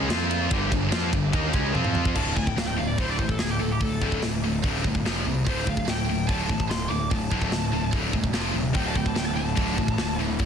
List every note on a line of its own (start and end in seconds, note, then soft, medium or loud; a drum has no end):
0.00 0.10 D6 medium
0.09 0.47 F2 medium
0.09 0.50 F3 medium
0.09 0.50 C4 medium
0.09 0.51 C4 medium
0.09 0.50 F4 loud
0.09 0.51 F4 medium
0.09 0.51 F5 medium
0.09 0.51 C6 medium
0.09 snare loud
0.09 ride loud
0.31 ride medium
0.50 0.70 G1 medium
0.50 0.70 G2 medium
0.50 0.70 D3 loud
0.50 0.71 G3 loud
0.50 1.74 D4 medium
0.50 1.75 G4 medium
0.50 1.74 G5 medium
0.50 1.74 D6 medium
0.50 kick loud
0.50 ride loud
0.71 0.91 G1 medium
0.71 0.88 G2 medium
0.71 0.88 D3 medium
0.71 kick medium
0.71 ride medium
0.92 1.12 F2 loud
0.92 1.12 F3 medium
0.92 1.12 C4 loud
0.92 1.13 F4 loud
0.92 snare loud
0.92 ride loud
1.13 1.32 G1 medium
1.13 1.30 G2 medium
1.13 1.30 D3 medium
1.13 kick loud
1.13 ride medium
1.33 1.53 D#2 loud
1.33 1.51 D#3 loud
1.33 1.52 A#3 loud
1.33 1.53 D#4 loud
1.33 kick loud
1.33 ride loud
1.52 1.73 C#2 medium
1.52 1.72 C#3 medium
1.52 1.73 G#3 loud
1.52 1.74 C#4 loud
1.52 kick loud
1.52 ride medium
1.73 2.13 F2 medium
1.73 2.14 F3 medium
1.73 2.15 C4 medium
1.73 2.16 C4 medium
1.73 2.15 F4 medium
1.73 2.16 F5 medium
1.73 2.16 C6 medium
1.73 high tom medium
1.77 2.17 F4 medium
1.84 mid tom medium
1.95 mid tom medium
2.05 kick medium
2.15 2.35 D1 medium
2.15 2.33 D2 medium
2.15 2.33 A2 medium
2.15 2.35 D3 loud
2.15 2.36 A5 medium
2.15 kick loud
2.15 crash loud
2.34 2.56 D1 medium
2.34 2.54 D2 medium
2.34 2.54 A2 medium
2.34 2.47 G#5 medium
2.34 kick medium
2.47 2.58 G5 medium
2.47 kick medium
2.56 2.96 D1 medium
2.56 2.75 D2 medium
2.56 2.75 A2 medium
2.56 2.67 F5 medium
2.56 snare loud
2.56 open hi-hat medium
2.67 2.77 G5 medium
2.76 2.96 D2 medium
2.76 2.96 A2 medium
2.76 2.87 F5 medium
2.87 2.98 D5 medium
2.98 3.18 D1 medium
2.98 3.18 D2 medium
2.98 3.18 A2 medium
2.98 3.18 D3 medium
2.98 3.10 C5 medium
2.98 kick loud
2.98 open hi-hat medium
3.10 3.18 D5 medium
3.19 3.38 A1 medium
3.19 3.38 D2 medium
3.19 3.38 A2 medium
3.19 3.29 C5 medium
3.19 kick medium
3.27 3.38 A4 loud
3.27 kick medium
3.38 3.59 D1 medium
3.38 3.58 D2 medium
3.38 3.58 A2 medium
3.38 3.49 G#4 medium
3.38 snare loud
3.38 open hi-hat medium
3.51 3.59 G4 medium
3.59 3.79 D1 medium
3.59 3.78 D2 medium
3.59 3.79 A2 medium
3.59 3.70 A4 medium
3.72 3.81 G4 medium
3.80 4.00 D1 medium
3.80 3.99 D2 medium
3.80 4.00 A2 medium
3.80 4.22 A4 loud
3.80 kick loud
3.80 open hi-hat medium
4.01 4.21 D1 medium
4.01 4.21 D2 medium
4.01 4.21 A2 medium
4.01 4.22 D3 loud
4.01 kick medium
4.12 kick medium
4.22 4.61 D1 medium
4.22 4.41 D2 medium
4.22 4.41 A2 medium
4.22 snare loud
4.22 open hi-hat medium
4.44 4.62 D2 medium
4.44 4.62 A2 medium
4.63 4.83 D1 medium
4.63 4.83 D2 loud
4.63 4.83 A2 medium
4.63 4.83 D3 loud
4.63 kick loud
4.63 open hi-hat medium
4.84 5.04 G1 medium
4.84 5.03 D2 medium
4.84 5.03 A2 medium
4.84 kick medium
4.95 kick medium
5.05 5.25 F1 medium
5.05 5.24 F2 medium
5.05 5.24 C3 medium
5.05 5.25 F3 medium
5.05 snare loud
5.05 open hi-hat medium
5.26 5.45 C2 medium
5.26 5.44 F2 medium
5.26 5.44 C3 medium
5.46 5.65 D1 medium
5.46 5.66 D2 medium
5.46 5.66 A2 loud
5.46 5.67 D3 medium
5.46 5.67 C5 loud
5.46 kick loud
5.46 open hi-hat medium
5.65 5.86 D1 medium
5.65 5.86 D2 medium
5.65 5.84 A2 medium
5.65 5.87 F5 medium
5.65 kick medium
5.69 5.86 A2 medium
5.77 kick medium
5.85 6.26 D1 medium
5.85 6.03 D2 medium
5.85 snare loud
5.85 open hi-hat medium
5.89 6.07 D2 medium
5.89 6.07 A2 medium
5.89 6.28 G5 medium
6.05 6.25 D2 medium
6.05 6.25 A2 medium
6.09 6.27 D2 medium
6.09 6.27 A2 medium
6.28 6.48 D1 medium
6.28 6.48 D2 medium
6.28 6.49 A2 medium
6.28 6.49 D3 loud
6.28 6.68 A5 medium
6.28 kick loud
6.28 open hi-hat medium
6.49 6.68 A1 medium
6.49 6.68 D2 medium
6.49 6.68 A2 medium
6.49 kick medium
6.60 kick medium
6.70 6.89 D1 medium
6.70 6.89 D2 medium
6.70 6.89 A2 medium
6.70 6.89 C6 medium
6.70 snare loud
6.70 open hi-hat medium
6.90 7.10 D1 medium
6.90 7.09 D2 medium
6.90 7.09 A2 medium
6.90 7.10 D6 medium
7.10 7.31 D1 medium
7.10 7.29 D2 medium
7.10 7.30 A2 medium
7.10 7.90 A5 loud
7.10 kick loud
7.10 open hi-hat medium
7.31 7.51 D1 medium
7.31 7.51 D2 medium
7.31 7.51 A2 loud
7.31 7.52 D3 loud
7.31 kick medium
7.42 kick medium
7.51 7.90 D1 medium
7.51 7.71 D2 medium
7.51 7.71 A2 medium
7.51 snare loud
7.51 open hi-hat medium
7.73 7.91 D2 medium
7.73 7.91 A2 medium
7.93 8.12 D1 medium
7.93 8.12 D2 medium
7.93 8.13 A2 loud
7.93 8.13 D3 loud
7.93 kick loud
7.93 open hi-hat medium
8.13 8.33 E1 medium
8.13 8.32 D2 medium
8.13 8.32 A2 medium
8.13 kick medium
8.24 kick medium
8.33 8.53 F1 medium
8.33 8.53 F2 medium
8.33 8.53 C3 medium
8.33 8.54 F3 medium
8.33 snare loud
8.33 open hi-hat medium
8.54 8.73 D#1 medium
8.54 8.73 F2 medium
8.54 8.73 C3 medium
8.73 8.95 D1 medium
8.73 8.93 D2 medium
8.73 8.94 A2 medium
8.73 8.94 D3 medium
8.73 8.85 G5 loud
8.73 kick loud
8.73 open hi-hat medium
8.87 8.96 A5 medium
8.96 9.15 D1 medium
8.96 9.14 D2 medium
8.96 9.14 A2 medium
8.96 9.08 G5 medium
8.96 kick medium
9.06 9.18 A5 medium
9.06 kick medium
9.15 9.55 D1 medium
9.15 9.34 D2 medium
9.15 9.34 A2 medium
9.15 9.26 G5 medium
9.15 snare loud
9.15 open hi-hat medium
9.26 9.34 A5 medium
9.35 9.54 D2 medium
9.35 9.55 A2 medium
9.35 10.16 A5 medium
9.55 9.77 D1 medium
9.55 9.76 D2 medium
9.55 9.76 A2 medium
9.55 9.76 D3 medium
9.55 kick loud
9.55 open hi-hat medium
9.77 9.97 A1 medium
9.77 9.96 D2 medium
9.77 9.96 A2 medium
9.77 kick medium
9.88 kick medium
9.98 10.18 D1 medium
9.98 10.17 D2 medium
9.98 10.17 A2 medium
9.98 snare loud
9.98 open hi-hat medium
10.18 10.39 D1 medium
10.18 10.38 D2 medium
10.18 10.38 A2 medium
10.18 10.38 D3 medium
10.39 10.45 D1 medium
10.39 10.45 D2 medium
10.39 10.45 A2 medium
10.39 10.45 D3 medium
10.39 kick loud
10.39 open hi-hat medium